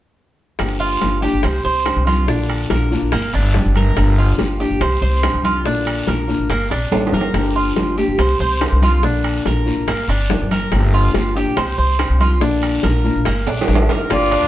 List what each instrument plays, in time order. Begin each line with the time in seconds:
0.59 upright bass G1, nylon-string guitar D3 F3 A#3 D4 G4, high bongo, high conga, high timbale, long guiro
0.80 cuban tres F4, high conga
1.01 upright bass G1, nylon-string guitar F3 A#3 D4 G4, high bongo, high conga, high timbale, short guiro
1.22 nylon-string guitar F3 A#3 D4 G4, cuban tres G4, high conga, short guiro
1.33 upright bass G1
1.43 upright bass C2, cuban tres C5, muted nylon-string guitar stroke, high bongo, high conga, high timbale, long guiro
1.64 upright bass C2, cuban tres C5, high conga
1.86 nylon-string guitar G3 C4 D4 G4, high bongo, low bongo, high conga, high timbale, short guiro
1.96 upright bass C2
2.07 cuban tres F4, high conga, high timbale, short guiro
2.27 upright bass A#1, nylon-string guitar D3 A#3 D4 F4, cuban tres D4, high bongo, long guiro
2.49 high bongo, high conga, high timbale
2.70 upright bass A#1, nylon-string guitar D3 A#3 D4 F4, cuban tres A#4, high bongo, high conga, high timbale, short guiro
2.91 nylon-string guitar A#3 D4 F4, high bongo, short guiro
3.02 upright bass A#1
3.12 upright bass G1, cuban tres A#3, muted nylon-string guitar stroke, high bongo, high conga, high timbale, long guiro
3.34 upright bass G1, cuban tres D4, high conga, high timbale
3.54 nylon-string guitar F3 A#3 D4 G4, high bongo, low bongo, high conga, short guiro
3.65 upright bass G1
3.75 cuban tres A#4, high bongo, high conga, high timbale, short guiro
3.96 upright bass G1, nylon-string guitar D3 F3 A#3 D4 G4, high bongo, high conga, high timbale, long guiro
4.18 cuban tres F4, high conga
4.38 upright bass G1, nylon-string guitar F3 A#3 D4 G4, high bongo, high conga, high timbale, short guiro
4.59 nylon-string guitar F3 A#3 D4 G4, cuban tres G4, high conga, short guiro
4.70 upright bass G1
4.80 upright bass C2, cuban tres C5, muted nylon-string guitar stroke, high bongo, high conga, high timbale, long guiro
5.02 upright bass C2, cuban tres C5, high conga
5.23 nylon-string guitar G3 C4 D4 G4, high bongo, low bongo, high conga, high timbale, short guiro
5.34 upright bass C2
5.43 cuban tres F4, high conga, high timbale, short guiro
5.65 upright bass A#1, nylon-string guitar D3 A#3 D4 F4, cuban tres D4, high bongo, high conga, long guiro
5.86 high bongo, high conga, high timbale
6.07 upright bass A#1, nylon-string guitar D3 A#3 D4 F4, cuban tres A#4, high bongo, high conga, high timbale, short guiro
6.28 nylon-string guitar A#3 D4 F4, high bongo, short guiro
6.39 upright bass A1
6.49 upright bass G1, cuban tres A#3, muted nylon-string guitar stroke, high bongo, high conga, high timbale, long guiro
6.70 upright bass A#1, cuban tres D4, high bongo, high conga, high timbale
6.91 upright bass A1, nylon-string guitar F3 A#3 D4 G4, low bongo, high conga, high timbale, short guiro
7.07 low timbale
7.12 upright bass G1, cuban tres A#4, low bongo, high conga, short guiro
7.21 low timbale
7.34 upright bass G1, nylon-string guitar D3 F3 A#3 D4 G4, high bongo, high conga, high timbale, long guiro
7.55 cuban tres F4, high conga
7.76 upright bass G1, nylon-string guitar F3 A#3 D4 G4, high bongo, high conga, high timbale, short guiro
7.97 nylon-string guitar F3 A#3 D4 G4, cuban tres G4, short guiro
8.08 upright bass G1
8.18 upright bass C2, cuban tres C5, muted nylon-string guitar stroke, high bongo, high conga, high timbale, long guiro
8.40 upright bass C2, cuban tres C5, high conga
8.60 nylon-string guitar G3 C4 D4 G4, high bongo, low bongo, high conga, high timbale, low timbale, short guiro
8.72 upright bass C2
8.82 cuban tres F4, high conga, high timbale, short guiro
9.03 upright bass A#1, nylon-string guitar D3 A#3 D4 F4, cuban tres D4, high bongo, high conga, long guiro
9.24 high bongo, high conga, high timbale
9.45 upright bass A#1, nylon-string guitar D3 A#3 D4 F4, cuban tres A#4, high bongo, high conga, high timbale, short guiro
9.66 nylon-string guitar A#3 D4 F4, high bongo, short guiro
9.77 upright bass A1
9.87 upright bass G1, cuban tres A#3, muted nylon-string guitar stroke, high bongo, high conga, high timbale, long guiro
10.08 upright bass G1, cuban tres D4, high conga, high timbale
10.30 nylon-string guitar F3 A#3 D4 G4, high bongo, low bongo, high conga, low timbale, short guiro
10.40 upright bass G1
10.51 cuban tres A#4, high bongo, high conga, high timbale, short guiro
10.71 upright bass G1, nylon-string guitar D3 F3 A#3 D4 G4, high bongo, high conga, high timbale, long guiro
10.94 cuban tres F4, high conga
11.14 upright bass G1, nylon-string guitar F3 A#3 D4 G4, high bongo, high conga, high timbale, short guiro
11.35 nylon-string guitar F3 A#3 D4 G4, cuban tres G4, high conga, short guiro
11.46 upright bass A#1
11.56 upright bass C2, cuban tres C5, muted nylon-string guitar stroke, high bongo, high conga, high timbale, long guiro
11.78 upright bass C2, cuban tres C5, high conga
11.98 nylon-string guitar G3 C4 D4 G4, high bongo, low bongo, high conga, high timbale, short guiro
12.10 upright bass C2
12.20 cuban tres F4, high conga, high timbale, short guiro
12.40 upright bass A#1, nylon-string guitar D3 A#3 D4 F4, cuban tres D4, high bongo, high conga, long guiro
12.62 high bongo, high conga, high timbale
12.83 upright bass A#1, nylon-string guitar D3 A#3 D4 F4, cuban tres A#4, high bongo, high conga, high timbale, short guiro
13.04 nylon-string guitar A#3 D4 F4, high bongo, short guiro
13.15 upright bass A#1
13.25 upright bass G1, cuban tres A#3, muted nylon-string guitar stroke, high bongo, high conga, high timbale, long guiro
13.47 upright bass A#1, cuban tres D4, high conga, high timbale
13.61 low timbale
13.68 upright bass A1, nylon-string guitar F3 A#3 D4 G4, high bongo, low bongo, high conga, short guiro
13.75 low timbale
13.89 upright bass G1, cuban tres A#4, high bongo, high conga, low timbale, short guiro
14.09 upright bass G1, nylon-string guitar D3 F3 A#3 D4 G4, trumpet F4, flute D5, high bongo, high conga, high timbale, long guiro
14.31 cuban tres D4, high bongo, high conga, high timbale
14.42 upright bass G1